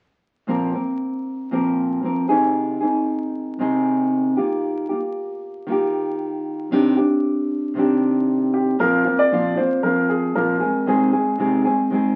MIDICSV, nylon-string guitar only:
0, 0, Header, 1, 2, 480
1, 0, Start_track
1, 0, Tempo, 519751
1, 444, Time_signature, 4, 2, 24, 8
1, 11225, End_track
2, 0, Start_track
2, 0, Title_t, "Nylon-string guitar"
2, 0, Program_c, 0, 24
2, 434, Note_on_c, 0, 46, 70
2, 441, Note_on_c, 0, 53, 65
2, 447, Note_on_c, 0, 58, 75
2, 451, Note_on_c, 0, 60, 77
2, 455, Note_on_c, 0, 70, 77
2, 662, Note_off_c, 0, 70, 0
2, 674, Note_on_c, 0, 70, 43
2, 679, Note_off_c, 0, 46, 0
2, 680, Note_off_c, 0, 60, 0
2, 682, Note_off_c, 0, 53, 0
2, 685, Note_off_c, 0, 58, 0
2, 691, Note_on_c, 0, 60, 39
2, 704, Note_on_c, 0, 58, 36
2, 1396, Note_off_c, 0, 58, 0
2, 1396, Note_on_c, 0, 46, 67
2, 1399, Note_off_c, 0, 70, 0
2, 1402, Note_on_c, 0, 53, 67
2, 1407, Note_on_c, 0, 58, 68
2, 1408, Note_off_c, 0, 60, 0
2, 1411, Note_on_c, 0, 60, 65
2, 1418, Note_on_c, 0, 70, 71
2, 1860, Note_off_c, 0, 53, 0
2, 1871, Note_off_c, 0, 58, 0
2, 1871, Note_on_c, 0, 53, 46
2, 1880, Note_off_c, 0, 46, 0
2, 1882, Note_on_c, 0, 58, 49
2, 1888, Note_off_c, 0, 60, 0
2, 1888, Note_off_c, 0, 70, 0
2, 1891, Note_on_c, 0, 60, 52
2, 1899, Note_on_c, 0, 70, 52
2, 2110, Note_off_c, 0, 70, 0
2, 2113, Note_on_c, 0, 68, 60
2, 2115, Note_off_c, 0, 60, 0
2, 2118, Note_off_c, 0, 53, 0
2, 2120, Note_on_c, 0, 63, 55
2, 2122, Note_off_c, 0, 58, 0
2, 2126, Note_on_c, 0, 60, 53
2, 2130, Note_on_c, 0, 51, 49
2, 2134, Note_on_c, 0, 48, 43
2, 2579, Note_off_c, 0, 68, 0
2, 2590, Note_on_c, 0, 68, 39
2, 2604, Note_off_c, 0, 63, 0
2, 2605, Note_off_c, 0, 60, 0
2, 2607, Note_on_c, 0, 63, 37
2, 2609, Note_off_c, 0, 48, 0
2, 2621, Note_on_c, 0, 60, 39
2, 3312, Note_on_c, 0, 48, 62
2, 3315, Note_off_c, 0, 51, 0
2, 3316, Note_off_c, 0, 60, 0
2, 3317, Note_off_c, 0, 68, 0
2, 3318, Note_on_c, 0, 51, 68
2, 3327, Note_off_c, 0, 63, 0
2, 3327, Note_on_c, 0, 60, 69
2, 3331, Note_on_c, 0, 63, 71
2, 3335, Note_on_c, 0, 68, 75
2, 4031, Note_off_c, 0, 68, 0
2, 4035, Note_on_c, 0, 67, 54
2, 4038, Note_off_c, 0, 48, 0
2, 4041, Note_off_c, 0, 63, 0
2, 4045, Note_on_c, 0, 65, 51
2, 4046, Note_off_c, 0, 60, 0
2, 4050, Note_on_c, 0, 58, 46
2, 4051, Note_off_c, 0, 51, 0
2, 4055, Note_on_c, 0, 51, 48
2, 4512, Note_off_c, 0, 67, 0
2, 4516, Note_on_c, 0, 67, 43
2, 4524, Note_off_c, 0, 65, 0
2, 4527, Note_off_c, 0, 58, 0
2, 4535, Note_on_c, 0, 65, 41
2, 4548, Note_on_c, 0, 58, 33
2, 4562, Note_off_c, 0, 51, 0
2, 5232, Note_on_c, 0, 51, 67
2, 5235, Note_off_c, 0, 58, 0
2, 5246, Note_on_c, 0, 58, 71
2, 5249, Note_off_c, 0, 65, 0
2, 5264, Note_on_c, 0, 65, 66
2, 5275, Note_off_c, 0, 67, 0
2, 5279, Note_on_c, 0, 67, 69
2, 6197, Note_on_c, 0, 48, 64
2, 6200, Note_off_c, 0, 51, 0
2, 6204, Note_off_c, 0, 58, 0
2, 6204, Note_on_c, 0, 51, 73
2, 6207, Note_on_c, 0, 60, 72
2, 6208, Note_off_c, 0, 65, 0
2, 6212, Note_on_c, 0, 62, 68
2, 6213, Note_off_c, 0, 67, 0
2, 6217, Note_on_c, 0, 67, 80
2, 6423, Note_off_c, 0, 67, 0
2, 6434, Note_on_c, 0, 67, 44
2, 6440, Note_off_c, 0, 48, 0
2, 6440, Note_off_c, 0, 62, 0
2, 6444, Note_off_c, 0, 51, 0
2, 6446, Note_off_c, 0, 60, 0
2, 6451, Note_on_c, 0, 62, 39
2, 6464, Note_on_c, 0, 60, 38
2, 7147, Note_on_c, 0, 48, 62
2, 7159, Note_off_c, 0, 67, 0
2, 7164, Note_on_c, 0, 51, 67
2, 7167, Note_off_c, 0, 62, 0
2, 7171, Note_off_c, 0, 60, 0
2, 7175, Note_on_c, 0, 60, 63
2, 7185, Note_on_c, 0, 62, 72
2, 7195, Note_on_c, 0, 67, 73
2, 8113, Note_off_c, 0, 48, 0
2, 8116, Note_on_c, 0, 46, 66
2, 8120, Note_off_c, 0, 51, 0
2, 8124, Note_on_c, 0, 53, 65
2, 8125, Note_off_c, 0, 60, 0
2, 8129, Note_off_c, 0, 62, 0
2, 8129, Note_on_c, 0, 58, 68
2, 8132, Note_off_c, 0, 67, 0
2, 8133, Note_on_c, 0, 60, 76
2, 8136, Note_on_c, 0, 65, 71
2, 8344, Note_off_c, 0, 65, 0
2, 8355, Note_on_c, 0, 65, 48
2, 8360, Note_off_c, 0, 46, 0
2, 8362, Note_off_c, 0, 60, 0
2, 8364, Note_off_c, 0, 53, 0
2, 8366, Note_off_c, 0, 58, 0
2, 8373, Note_on_c, 0, 60, 40
2, 8385, Note_on_c, 0, 58, 35
2, 8598, Note_off_c, 0, 58, 0
2, 8598, Note_on_c, 0, 46, 61
2, 8599, Note_off_c, 0, 65, 0
2, 8605, Note_off_c, 0, 60, 0
2, 8605, Note_on_c, 0, 53, 66
2, 8609, Note_on_c, 0, 58, 68
2, 8616, Note_on_c, 0, 60, 67
2, 8619, Note_on_c, 0, 65, 78
2, 8826, Note_off_c, 0, 65, 0
2, 8837, Note_on_c, 0, 65, 44
2, 8841, Note_off_c, 0, 46, 0
2, 8843, Note_off_c, 0, 60, 0
2, 8844, Note_off_c, 0, 53, 0
2, 8846, Note_off_c, 0, 58, 0
2, 8854, Note_on_c, 0, 60, 43
2, 8867, Note_on_c, 0, 58, 40
2, 9074, Note_on_c, 0, 53, 48
2, 9076, Note_off_c, 0, 58, 0
2, 9080, Note_off_c, 0, 65, 0
2, 9086, Note_off_c, 0, 60, 0
2, 9087, Note_on_c, 0, 58, 50
2, 9097, Note_on_c, 0, 60, 52
2, 9105, Note_on_c, 0, 65, 51
2, 9547, Note_off_c, 0, 53, 0
2, 9552, Note_on_c, 0, 46, 64
2, 9555, Note_off_c, 0, 58, 0
2, 9558, Note_on_c, 0, 53, 63
2, 9563, Note_off_c, 0, 65, 0
2, 9566, Note_on_c, 0, 58, 71
2, 9567, Note_off_c, 0, 60, 0
2, 9571, Note_on_c, 0, 60, 69
2, 9574, Note_on_c, 0, 65, 68
2, 9785, Note_off_c, 0, 65, 0
2, 9789, Note_on_c, 0, 68, 46
2, 9794, Note_off_c, 0, 60, 0
2, 9798, Note_off_c, 0, 46, 0
2, 9801, Note_off_c, 0, 53, 0
2, 9805, Note_off_c, 0, 58, 0
2, 9805, Note_on_c, 0, 60, 42
2, 9820, Note_on_c, 0, 56, 40
2, 10031, Note_on_c, 0, 48, 65
2, 10033, Note_off_c, 0, 56, 0
2, 10036, Note_off_c, 0, 68, 0
2, 10037, Note_on_c, 0, 51, 71
2, 10038, Note_off_c, 0, 60, 0
2, 10044, Note_on_c, 0, 56, 68
2, 10049, Note_on_c, 0, 60, 83
2, 10052, Note_on_c, 0, 68, 80
2, 10262, Note_off_c, 0, 68, 0
2, 10273, Note_on_c, 0, 68, 49
2, 10277, Note_off_c, 0, 48, 0
2, 10280, Note_off_c, 0, 51, 0
2, 10280, Note_off_c, 0, 60, 0
2, 10284, Note_off_c, 0, 56, 0
2, 10291, Note_on_c, 0, 60, 42
2, 10303, Note_on_c, 0, 56, 40
2, 10512, Note_on_c, 0, 48, 63
2, 10513, Note_off_c, 0, 56, 0
2, 10517, Note_off_c, 0, 60, 0
2, 10518, Note_off_c, 0, 68, 0
2, 10521, Note_on_c, 0, 51, 66
2, 10524, Note_on_c, 0, 56, 69
2, 10528, Note_on_c, 0, 60, 67
2, 10536, Note_on_c, 0, 68, 64
2, 10744, Note_off_c, 0, 68, 0
2, 10755, Note_on_c, 0, 68, 48
2, 10758, Note_off_c, 0, 48, 0
2, 10761, Note_off_c, 0, 60, 0
2, 10762, Note_off_c, 0, 51, 0
2, 10764, Note_off_c, 0, 56, 0
2, 10772, Note_on_c, 0, 60, 46
2, 10784, Note_on_c, 0, 56, 41
2, 10993, Note_on_c, 0, 51, 55
2, 10994, Note_off_c, 0, 56, 0
2, 10999, Note_off_c, 0, 68, 0
2, 11004, Note_off_c, 0, 60, 0
2, 11005, Note_on_c, 0, 56, 57
2, 11015, Note_on_c, 0, 60, 67
2, 11026, Note_on_c, 0, 68, 59
2, 11225, Note_off_c, 0, 51, 0
2, 11225, Note_off_c, 0, 56, 0
2, 11225, Note_off_c, 0, 60, 0
2, 11225, Note_off_c, 0, 68, 0
2, 11225, End_track
0, 0, End_of_file